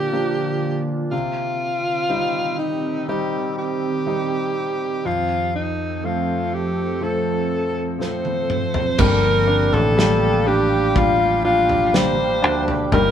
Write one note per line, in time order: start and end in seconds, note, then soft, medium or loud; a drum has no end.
0.00 1.08 A#2 soft
0.00 1.09 D3 medium
0.00 0.12 F3 soft
0.00 0.13 A#3 soft
0.00 1.08 A#3 medium
0.00 0.13 D4 soft
0.00 1.08 F4 medium
0.00 0.85 G4 medium
0.12 1.09 F3 soft
0.12 1.09 A#3 soft
0.12 1.09 D4 soft
1.11 5.01 C3 soft
1.11 5.01 D#3 medium
1.11 5.01 C4 medium
1.11 2.56 F4 medium
1.11 5.02 G4 medium
2.09 3.05 G3 soft
2.09 3.05 C4 soft
2.09 3.06 D#4 soft
2.59 3.05 D#4 medium
3.08 4.04 G3 soft
3.08 4.04 C4 soft
3.08 4.05 D#4 soft
3.08 3.55 G4 medium
3.58 5.08 G4 medium
4.06 5.02 G3 soft
4.06 5.03 C4 soft
4.06 5.03 D#4 soft
5.05 8.95 F2 soft
5.05 8.95 F3 medium
5.05 8.95 C4 medium
5.05 5.55 F4 medium
5.05 8.95 A4 medium
5.55 6.07 D#4 medium
6.04 6.99 F3 soft
6.04 6.99 A3 soft
6.04 7.00 C4 soft
6.04 6.56 F4 medium
6.54 7.05 G4 medium
7.01 7.97 F3 soft
7.01 7.97 A3 soft
7.01 7.97 C4 soft
7.01 7.85 A4 medium
7.99 8.95 F3 soft
7.99 8.95 A3 soft
7.99 8.95 C4 soft
7.99 9.01 C5 medium
7.99 snare soft
8.25 high tom medium
8.50 mid tom medium
8.74 floor tom medium
8.98 9.69 G1 loud
8.98 9.96 G2 medium
8.98 9.96 D3 medium
8.98 9.96 F3 medium
8.98 9.95 G3 medium
8.98 9.97 A#3 medium
8.98 9.97 D4 medium
8.98 13.11 G4 medium
8.98 9.97 G4 medium
8.98 9.75 A#4 loud
8.98 12.88 F5 medium
8.98 13.11 G5 medium
8.98 kick medium
8.98 floor tom medium
8.98 crash medium
9.48 10.44 D4 medium
9.73 12.44 A1 medium
9.73 10.49 A4 medium
9.73 floor tom medium
9.97 10.46 G2 medium
9.97 10.47 D3 medium
9.97 10.45 F3 medium
9.97 10.93 G3 medium
9.97 10.45 A#3 medium
9.97 10.46 D4 medium
9.97 10.47 G4 medium
9.97 snare loud
10.46 10.71 F3 medium
10.46 10.71 A#3 medium
10.46 11.43 D4 medium
10.46 10.70 D4 medium
10.46 10.99 G4 medium
10.46 10.69 G4 medium
10.71 11.20 F3 soft
10.71 11.20 A#3 soft
10.71 11.19 D4 soft
10.71 11.18 G4 soft
10.95 11.92 G3 medium
10.95 11.44 F4 medium
10.95 kick medium
10.95 floor tom medium
11.20 11.43 F3 soft
11.20 11.44 A#3 soft
11.20 11.45 D4 soft
11.20 11.45 G4 soft
11.44 11.69 F3 medium
11.44 11.70 A#3 medium
11.44 12.41 D4 soft
11.44 11.69 D4 medium
11.44 11.96 F4 medium
11.44 11.69 G4 medium
11.69 11.94 F3 soft
11.69 11.94 A#3 soft
11.69 11.94 D4 soft
11.69 11.94 G4 soft
11.69 floor tom medium
11.93 12.19 G2 medium
11.93 12.19 D3 medium
11.93 12.19 F3 medium
11.93 12.89 G3 soft
11.93 12.18 A#3 medium
11.93 12.18 D4 medium
11.93 12.17 G4 medium
11.93 12.66 C5 medium
11.93 snare loud
12.18 12.41 F3 soft
12.18 12.43 A#3 medium
12.18 12.43 D4 soft
12.18 12.43 G4 medium
12.42 12.89 D2 medium
12.42 12.68 F3 medium
12.42 12.68 A#3 medium
12.42 12.91 D4 medium
12.42 12.68 D4 medium
12.42 12.67 G4 medium
12.68 12.93 F3 soft
12.68 12.92 A#3 soft
12.68 12.93 D4 soft
12.68 12.93 G4 medium
12.68 floor tom medium
12.92 13.11 G1 loud
12.92 13.11 G2 medium
12.92 13.11 D#3 medium
12.92 13.11 G3 medium
12.92 13.11 A#3 medium
12.92 13.11 D#4 medium
12.92 13.11 G4 medium
12.92 13.11 A#4 loud
12.92 13.11 D#5 medium
12.92 floor tom medium